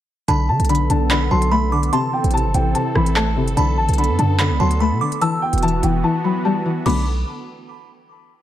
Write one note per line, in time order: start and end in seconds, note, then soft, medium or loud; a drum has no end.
0.28 0.50 B1 loud
0.28 0.68 D3 loud
0.28 1.91 D3 medium
0.28 1.91 B3 medium
0.28 1.91 A4 medium
0.28 1.06 A5 loud
0.28 0.47 B5 medium
0.28 closed hi-hat medium
0.49 0.59 D3 loud
0.49 0.68 A5 medium
0.60 0.89 B1 loud
0.60 closed hi-hat medium
0.65 closed hi-hat medium
0.69 0.89 D3 medium
0.69 0.88 B5 medium
0.69 closed hi-hat medium
0.75 closed hi-hat medium
0.90 1.29 B1 loud
0.90 1.09 D3 medium
0.90 1.09 A5 medium
0.90 closed hi-hat medium
1.10 1.71 D3 medium
1.10 1.30 B5 loud
1.10 1.29 B5 medium
1.10 clap loud
1.10 closed hi-hat medium
1.31 1.90 B1 loud
1.31 1.93 F#3 medium
1.31 1.51 A5 medium
1.31 1.50 C6 medium
1.42 closed hi-hat medium
1.51 1.93 A3 medium
1.51 1.71 B5 medium
1.51 1.90 B5 medium
1.72 1.93 D3 medium
1.72 1.92 D6 medium
1.83 closed hi-hat medium
1.93 2.32 C3 loud
1.93 3.55 E3 medium
1.93 3.55 C4 medium
1.93 5.18 A4 medium
1.93 2.12 A5 medium
1.93 2.71 C6 loud
1.93 closed hi-hat medium
2.13 2.32 G5 medium
2.24 2.46 A1 loud
2.24 closed hi-hat medium
2.31 2.53 C3 medium
2.31 2.53 A5 medium
2.31 closed hi-hat medium
2.37 closed hi-hat medium
2.45 2.54 G1 loud
2.54 2.74 A1 loud
2.54 2.74 C3 medium
2.54 2.73 G5 medium
2.54 closed hi-hat loud
2.75 3.36 C3 medium
2.75 2.94 A5 medium
2.75 closed hi-hat medium
2.95 3.38 A1 loud
2.95 3.57 E3 medium
2.95 3.14 B5 medium
2.95 cross-stick loud
3.06 closed hi-hat medium
3.16 3.57 A3 medium
3.16 3.55 A5 medium
3.16 clap loud
3.36 3.56 G1 loud
3.36 3.57 C3 medium
3.48 closed hi-hat medium
3.56 3.79 B1 loud
3.56 3.97 D3 medium
3.56 5.20 D3 medium
3.56 5.20 B3 medium
3.56 4.35 A5 loud
3.56 3.76 B5 medium
3.56 closed hi-hat medium
3.78 3.88 A1 loud
3.78 3.97 A5 medium
3.89 4.11 B1 loud
3.89 closed hi-hat medium
3.93 closed hi-hat medium
3.98 4.17 D3 medium
3.98 4.17 B5 medium
3.98 closed hi-hat medium
4.04 closed hi-hat medium
4.09 4.18 F#2 loud
4.18 4.52 F#2 loud
4.18 4.38 D3 medium
4.18 4.38 A5 medium
4.18 closed hi-hat medium
4.39 5.00 D3 medium
4.39 4.59 B5 medium
4.39 4.58 B5 medium
4.39 clap loud
4.39 closed hi-hat medium
4.50 4.59 C2 loud
4.59 4.93 D2 loud
4.59 5.21 F#3 medium
4.59 4.79 A5 medium
4.59 4.79 C6 medium
4.71 closed hi-hat medium
4.80 5.22 A3 medium
4.80 5.00 B5 medium
4.80 5.19 B5 medium
4.91 5.00 B2 loud
5.01 5.22 D3 medium
5.01 5.21 D6 medium
5.12 closed hi-hat medium
5.21 5.62 E3 loud
5.21 6.84 E3 medium
5.21 6.84 B3 medium
5.21 6.84 F#4 medium
5.21 5.40 A5 loud
5.21 6.00 E6 loud
5.21 closed hi-hat medium
5.42 5.61 G5 medium
5.53 5.82 E1 loud
5.53 closed hi-hat medium
5.58 closed hi-hat medium
5.63 5.82 E3 medium
5.63 5.82 A5 loud
5.63 closed hi-hat medium
5.68 closed hi-hat soft
5.83 6.03 E1 loud
5.83 6.02 E3 medium
5.83 6.02 G5 medium
5.83 closed hi-hat loud
6.04 6.64 E3 medium
6.04 6.23 A5 medium
6.24 6.85 F#3 medium
6.24 6.43 B5 medium
6.45 6.86 G3 medium
6.45 6.83 A5 medium
6.66 6.86 E3 medium
6.86 7.24 B1 loud
6.86 7.05 D3 medium
6.86 7.05 F#3 medium
6.86 7.05 A3 medium
6.86 7.05 B3 medium
6.86 7.05 A4 medium
6.86 7.05 B5 medium
6.86 7.05 D6 medium
6.86 closed hi-hat medium
6.86 crash medium